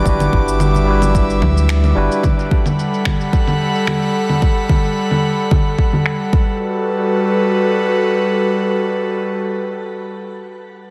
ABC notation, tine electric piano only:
X:1
M:4/4
L:1/8
Q:"Swing 16ths" 1/4=110
K:G
V:1 name="Tine electric piano"
[G,DEFB]3 [G,DEFB]4 [G,DEFB] | z8 | z8 | z8 |
z8 |]